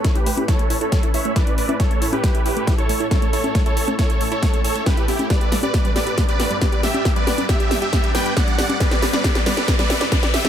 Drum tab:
HH |xxoxxxoxxxoxxxox|xxoxxxoxxxoxxxox|xxoxxxoxxxoxxxox|xxoxxxoxxxoxxxox|
SD |o---o---o---o---|o---o---o---o---|o---o---o---o---|o-o-o-o-o-o-o-o-|
CG |---o-----------o|---o--------o--o|---o-----------o|---o--------o--o|
BD |o---o---o---o---|o---o---o---o---|o---o---o---o---|o---o---o---o---|

HH |xxoxxxoxxxoxxxox|xxoxxxoxxxoxxxox|
SD |o-o-o-o-o-o-o-o-|oooooooooooooooo|
CG |---o-----------o|---o--------o--o|
BD |o---o---o---o---|o---o---o---o---|